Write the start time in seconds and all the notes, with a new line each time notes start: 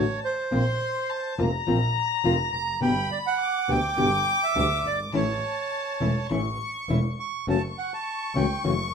Already playing: A1 C#5 A5
0.24 C5
0.51 A#1 F3 A#3 C4 F4 C6
1.10 A5
1.38 F1 F3 A#3 C4 F4 A#5
1.67 A#1 F3 A#3 C4 F4
2.24 F1 F3 A#3 C4 F4
2.53 F1 A#5
2.81 G1 B2 D3 G3 B3 G4 G5 B5
3.12 D5
3.26 F#5
3.40 D6
3.68 D2 B2 D3 G3 B3 G4 G5
3.97 G1 B2 D3 G3 B3 G4
4.43 E5
4.55 D2 B2 D3 G3 B3 G4
4.85 G1 D5
5.13 A1 E3 A3 C#4 E4 C#5 A5
6.00 E1 E3 A3 C#4 E4
6.30 A1 E3 A3 C#4 E4 C#6
6.89 E1 E3 A3 C#4 E4
7.20 C#6
7.47 F#1 C#3 E3 A3 C#4 F#4 A5 C#6
7.78 F#5
7.94 A5
8.35 C#2 C#3 E3 A3 C#4 F#4 G5
8.64 F#1 C#3 E3 A3 C#4 F#4